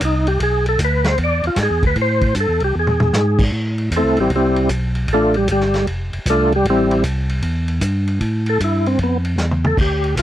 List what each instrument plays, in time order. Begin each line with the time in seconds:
0.00 tonewheel organ C2, kick, hi-hat pedal, ride
0.05 tonewheel organ D#4
0.27 tonewheel organ G4, ride
0.40 tonewheel organ B1 G#4, kick, ride
0.66 tonewheel organ A4, ride
0.79 tonewheel organ D2, kick, hi-hat pedal, ride
0.84 tonewheel organ B4
1.04 tonewheel organ C5, snare, ride
1.18 tonewheel organ E2, kick, ride
1.24 tonewheel organ D5
1.43 tonewheel organ E2 F4, ride
1.56 tonewheel organ G#2, kick, snare, hi-hat pedal, ride
1.63 tonewheel organ G#4
1.70 tonewheel organ E2
1.83 tonewheel organ D2, kick, ride
1.87 tonewheel organ B4
1.96 tonewheel organ A2, kick, ride
2.02 tonewheel organ C5
2.21 kick, ride
2.35 tonewheel organ G2, kick, hi-hat pedal, ride
2.40 tonewheel organ A4
2.49 tonewheel organ E2
2.60 tonewheel organ C2, ride
2.64 tonewheel organ G4
2.75 tonewheel organ E2
2.79 tonewheel organ G#4
2.87 mid tom
3.00 mid tom
3.13 tonewheel organ G#2, snare, hi-hat pedal
3.39 kick, crash
3.52 tonewheel organ A2, kick
3.78 ride
3.91 tonewheel organ E2, kick, hi-hat pedal, ride
3.96 tonewheel organ A3 C4 E4 A4
4.04 tonewheel organ C2
4.17 tonewheel organ A1 C4 E4 G4, ride
4.21 tonewheel organ G3
4.30 tonewheel organ C2, kick, ride
4.36 tonewheel organ G3 C4 E4 G4
4.56 ride
4.69 tonewheel organ B1, kick, hi-hat pedal, ride
4.95 ride
5.08 tonewheel organ A1, kick, ride
5.13 tonewheel organ A3 D4 F4 A4
5.34 tonewheel organ G3 G4, ride
5.48 tonewheel organ G1 G4, kick, hi-hat pedal, ride
5.52 tonewheel organ G3
5.61 snare
5.74 snare, ride
5.87 tonewheel organ F1, kick, ride
6.12 tonewheel organ F1, ride
6.26 tonewheel organ C2, kick, hi-hat pedal, ride
6.30 tonewheel organ A3 D4 F4 A4
6.52 tonewheel organ G3 G4, ride
6.65 tonewheel organ A1, kick, ride
6.70 tonewheel organ G3 C4 E4 G4
6.91 ride
7.04 tonewheel organ C2, kick, hi-hat pedal, ride
7.29 ride
7.42 tonewheel organ E2, kick, ride
7.68 ride
7.81 tonewheel organ G2, kick, hi-hat pedal, ride
8.07 ride
8.21 tonewheel organ A2, kick, ride
8.46 tonewheel organ A4, ride
8.60 tonewheel organ G2, kick, hi-hat pedal, ride
8.64 tonewheel organ E4
8.86 tonewheel organ C4, ride
8.98 tonewheel organ F2, kick, ride
9.03 tonewheel organ B3
9.25 ride
9.36 tonewheel organ E2, snare, hi-hat pedal
9.51 high tom
9.64 tonewheel organ A4, high tom
9.77 tonewheel organ D2 G4, kick, crash
10.04 ride
10.16 tonewheel organ B1, kick, hi-hat pedal, ride